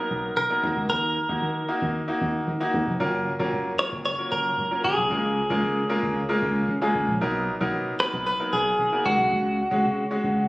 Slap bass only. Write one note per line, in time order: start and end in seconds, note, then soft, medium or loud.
0.11 0.29 B1 loud
0.37 0.46 B2 loud
0.63 0.72 D#2 loud
0.76 0.86 C#2 medium
0.90 1.17 D#2 loud
1.29 1.38 D#2 medium
1.42 1.61 D#3 loud
1.82 2.00 D#2 medium
2.21 2.39 D#2 loud
2.47 2.57 D#3 loud
2.74 2.83 D#2 medium
2.87 2.96 F1 medium
3.00 3.28 F#1 loud
3.40 3.49 F#1 medium
3.53 3.71 F#2 loud
3.92 4.11 F#1 medium
4.32 4.50 F#1 loud
4.58 4.67 F#2 loud
4.84 4.93 F#1 loud
4.97 5.07 B1 medium
5.11 5.38 C#2 loud
5.50 5.59 C#2 loud
5.63 5.82 C#3 loud
6.03 6.21 C#2 medium
6.42 6.60 C#2 medium
6.69 6.78 C#3 loud
6.95 7.04 C#2 medium
7.08 7.17 A#1 medium
7.21 7.49 B1 loud
7.61 7.70 B1 medium
7.74 7.92 B2 loud
8.13 8.32 B1 medium
8.53 8.71 B1 loud
8.79 8.88 B2 loud
9.05 9.15 C#2 loud
9.19 9.28 B1 loud
9.32 9.59 C#2 loud
9.71 9.86 C#2 medium
9.84 10.03 C#3 loud
10.24 10.42 C#2 medium